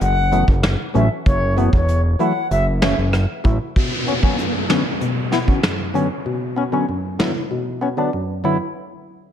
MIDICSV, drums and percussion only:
0, 0, Header, 1, 2, 480
1, 0, Start_track
1, 0, Key_signature, 2, "minor"
1, 0, Tempo, 625000
1, 968, Time_signature, 4, 2, 24, 8
1, 7160, End_track
2, 0, Start_track
2, 0, Title_t, "Drums"
2, 8, Note_on_c, 9, 42, 83
2, 85, Note_off_c, 9, 42, 0
2, 247, Note_on_c, 9, 42, 63
2, 324, Note_off_c, 9, 42, 0
2, 368, Note_on_c, 9, 36, 91
2, 445, Note_off_c, 9, 36, 0
2, 487, Note_on_c, 9, 37, 106
2, 487, Note_on_c, 9, 38, 120
2, 488, Note_on_c, 9, 42, 69
2, 564, Note_off_c, 9, 37, 0
2, 564, Note_off_c, 9, 38, 0
2, 565, Note_off_c, 9, 42, 0
2, 729, Note_on_c, 9, 42, 55
2, 806, Note_off_c, 9, 42, 0
2, 968, Note_on_c, 9, 42, 71
2, 969, Note_on_c, 9, 36, 112
2, 1045, Note_off_c, 9, 36, 0
2, 1045, Note_off_c, 9, 42, 0
2, 1209, Note_on_c, 9, 42, 51
2, 1286, Note_off_c, 9, 42, 0
2, 1328, Note_on_c, 9, 36, 91
2, 1405, Note_off_c, 9, 36, 0
2, 1446, Note_on_c, 9, 42, 85
2, 1523, Note_off_c, 9, 42, 0
2, 1687, Note_on_c, 9, 42, 51
2, 1764, Note_off_c, 9, 42, 0
2, 1928, Note_on_c, 9, 42, 82
2, 2005, Note_off_c, 9, 42, 0
2, 2166, Note_on_c, 9, 38, 110
2, 2166, Note_on_c, 9, 42, 61
2, 2243, Note_off_c, 9, 38, 0
2, 2243, Note_off_c, 9, 42, 0
2, 2405, Note_on_c, 9, 37, 101
2, 2407, Note_on_c, 9, 42, 66
2, 2482, Note_off_c, 9, 37, 0
2, 2484, Note_off_c, 9, 42, 0
2, 2648, Note_on_c, 9, 36, 104
2, 2648, Note_on_c, 9, 42, 51
2, 2725, Note_off_c, 9, 36, 0
2, 2725, Note_off_c, 9, 42, 0
2, 2887, Note_on_c, 9, 42, 65
2, 2889, Note_on_c, 9, 36, 107
2, 2964, Note_off_c, 9, 42, 0
2, 2965, Note_off_c, 9, 36, 0
2, 3130, Note_on_c, 9, 42, 49
2, 3207, Note_off_c, 9, 42, 0
2, 3248, Note_on_c, 9, 36, 86
2, 3325, Note_off_c, 9, 36, 0
2, 3368, Note_on_c, 9, 42, 83
2, 3444, Note_off_c, 9, 42, 0
2, 3607, Note_on_c, 9, 38, 110
2, 3607, Note_on_c, 9, 42, 51
2, 3684, Note_off_c, 9, 38, 0
2, 3684, Note_off_c, 9, 42, 0
2, 3848, Note_on_c, 9, 42, 80
2, 3925, Note_off_c, 9, 42, 0
2, 4088, Note_on_c, 9, 38, 62
2, 4088, Note_on_c, 9, 42, 57
2, 4164, Note_off_c, 9, 42, 0
2, 4165, Note_off_c, 9, 38, 0
2, 4208, Note_on_c, 9, 36, 88
2, 4285, Note_off_c, 9, 36, 0
2, 4327, Note_on_c, 9, 37, 98
2, 4327, Note_on_c, 9, 38, 116
2, 4328, Note_on_c, 9, 42, 66
2, 4404, Note_off_c, 9, 37, 0
2, 4404, Note_off_c, 9, 38, 0
2, 4405, Note_off_c, 9, 42, 0
2, 4570, Note_on_c, 9, 42, 49
2, 4646, Note_off_c, 9, 42, 0
2, 5526, Note_on_c, 9, 38, 113
2, 5603, Note_off_c, 9, 38, 0
2, 7160, End_track
0, 0, End_of_file